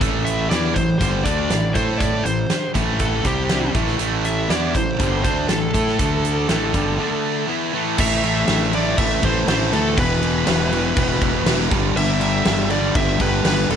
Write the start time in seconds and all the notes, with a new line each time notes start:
0.01 A1 A2 E3 A3, kick, closed hi-hat
0.25 E5, closed hi-hat
0.49 E2 E3 B3 E4 D5, snare, closed hi-hat
0.74 A1 A2 E3 C5, kick, closed hi-hat
0.99 G1 G2 D3 G3 C5, kick, closed hi-hat
1.24 D2 D3 A3 D4 D5, kick, closed hi-hat
1.50 A1 A2 E3, snare, closed hi-hat
1.74 A2 A3 E4 A4 C5, kick, closed hi-hat
1.98 D5, kick, closed hi-hat
2.24 A1 A2 E3 C5, closed hi-hat
2.50 muted distorted electric guitar stroke, muted fingered electric bass stroke, snare, closed hi-hat
2.75 A1 A2 E3 A3, kick, closed hi-hat
2.99 A4, kick, closed hi-hat
3.25 C2 C3 G3 C4 G4, kick, closed hi-hat
3.49 snare, closed hi-hat
3.75 A1 A2 E3 A3, kick, closed hi-hat
3.87 snare
3.99 A1 A2 E3 A3, closed hi-hat
4.25 E5, closed hi-hat
4.49 E2 E3 B3 E4 D5, snare, closed hi-hat
4.74 A1 A2 E3 C5, kick, closed hi-hat
4.98 G1 G2 D3 G3, kick, closed hi-hat
5.23 D2 D3 A3 D4 C5, kick, closed hi-hat
5.48 A1 A2 E3 A4, snare, closed hi-hat
5.73 A2 A3 E4 A4, kick, closed hi-hat
5.88 snare
5.99 D2 D3 A3 D4, kick, closed hi-hat
6.25 closed hi-hat
6.49 A1 A2 E3 A3, snare, closed hi-hat
6.73 G1 G2 D3 G3, kick, closed hi-hat
6.99 D3 A3 D4
7.47 E3 B3 E4
7.73 A2 E3 A3
7.98 A1 A2 E3 A3 E5, kick, crash
8.23 A2 E3 A3, crash
8.48 A1 A2 E3 A3, snare, crash
8.73 A2 E3 A3 D5, crash
8.98 A1 A2 E3 A3 E5, kick, crash
9.22 A1 A2 E3 A3 C5, kick, crash
9.47 A1 A2 E3 A3 C5, snare, crash
9.72 D2 A2 E3 A3 A4, snare, crash
9.96 E1 E2 B2 E3 B4, kick, crash
10.22 E2 B2 E3, crash
10.46 E1 E2 B2 E3, snare, crash
10.72 E2 B2 E3, crash
10.96 E1 E2 B2 E3, kick, crash
11.21 E1 E2 B2 E3, kick, crash
11.45 E1 E2 B2 E3, snare, crash
11.70 G1 G2 D3 G3, kick, snare, crash
11.95 G1 G2 D3 G3 E5, crash
12.20 G2 D3 G3, crash
12.45 G1 G2 D3 G3, snare, crash
12.70 G2 D3 G3 D5, crash
12.95 G1 G2 D3 G3 E5, kick, crash
13.18 G1 G2 D3 G3 B4, kick, crash
13.44 G1 G2 D3 G3 B4, snare, crash
13.68 E1 G2 D3 G3 A4, crash